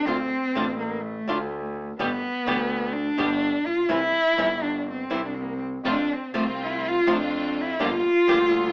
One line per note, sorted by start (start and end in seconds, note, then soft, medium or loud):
0.05 0.26 D2 medium
0.05 0.15 D3 medium
0.05 0.16 A3 medium
0.05 0.79 C4 loud
0.05 0.16 D4 medium
0.05 0.16 F4 medium
0.54 1.23 A1 loud
0.54 0.64 D3 medium
0.54 0.65 A3 medium
0.54 0.65 D4 medium
0.54 0.65 F4 medium
0.79 1.03 A#3 medium
1.02 1.75 A3 medium
1.26 1.95 D2 loud
1.26 1.36 D3 medium
1.26 1.37 A3 medium
1.26 1.37 D4 medium
1.26 1.37 F4 medium
1.98 2.19 G1 loud
1.98 2.08 B2 medium
1.98 2.08 D3 medium
1.98 2.08 G3 medium
1.98 2.95 B3 loud
1.98 2.09 B3 medium
1.98 2.09 G4 medium
2.45 3.14 D2 loud
2.45 2.56 B2 medium
2.45 2.56 D3 medium
2.45 2.56 G3 loud
2.45 2.56 B3 loud
2.45 2.56 G4 medium
2.93 3.68 D4 loud
3.16 3.64 G1 loud
3.16 3.27 B2 medium
3.16 3.27 D3 medium
3.16 3.27 G3 medium
3.16 3.27 B3 medium
3.16 3.27 G4 medium
3.65 3.88 A#1 medium
3.65 3.92 F4 loud
3.88 4.10 C2 medium
3.88 3.98 C3 medium
3.88 3.99 E3 medium
3.88 3.99 G3 medium
3.88 3.99 C4 medium
3.88 3.99 E4 medium
3.88 4.65 E4 loud
4.37 5.07 G1 medium
4.37 4.47 C3 medium
4.37 4.47 E3 medium
4.37 4.47 G3 medium
4.37 4.47 C4 loud
4.37 4.47 E4 medium
4.64 4.87 D4 medium
4.91 5.28 C4 medium
5.10 5.81 C2 loud
5.10 5.20 C3 medium
5.10 5.20 E3 medium
5.10 5.20 G3 medium
5.10 5.20 C4 medium
5.10 5.20 E4 medium
5.26 5.36 D4 medium
5.35 5.45 C4 medium
5.44 5.55 A#3 medium
5.54 5.62 C4 medium
5.83 6.05 F2 medium
5.83 5.94 C3 medium
5.83 5.94 F3 medium
5.83 6.06 A3 medium
5.83 5.94 A3 medium
5.83 6.06 C4 medium
5.83 5.94 C4 medium
5.83 6.06 F4 medium
5.83 5.95 F4 medium
5.90 6.15 D4 loud
6.13 6.36 C4 medium
6.33 7.03 C2 medium
6.33 6.43 C3 medium
6.33 6.43 F3 medium
6.33 7.04 A3 medium
6.33 6.43 A3 medium
6.33 7.04 C4 medium
6.33 6.43 C4 medium
6.33 7.04 F4 medium
6.33 6.44 F4 medium
6.38 6.65 C4 medium
6.64 6.90 E4 medium
6.88 7.15 F4 loud
7.06 7.76 F2 medium
7.06 7.16 C3 medium
7.06 7.16 F3 medium
7.06 7.16 A3 medium
7.06 7.77 A3 medium
7.06 7.16 C4 medium
7.06 7.77 C4 medium
7.06 7.17 F4 loud
7.06 7.77 F4 loud
7.13 7.63 D4 medium
7.61 7.87 E4 medium
7.79 8.01 G1 loud
7.79 7.89 D3 medium
7.79 7.89 F3 medium
7.79 8.01 G3 medium
7.79 8.01 A#3 medium
7.79 7.89 A#3 loud
7.79 7.89 D4 medium
7.79 8.01 F4 medium
7.79 7.89 G4 medium
7.86 8.72 F4 loud
8.27 8.72 D2 loud
8.27 8.37 D3 medium
8.27 8.37 F3 medium
8.27 8.72 G3 medium
8.27 8.37 A#3 loud
8.27 8.72 A#3 medium
8.27 8.38 D4 medium
8.27 8.72 F4 medium
8.27 8.38 G4 loud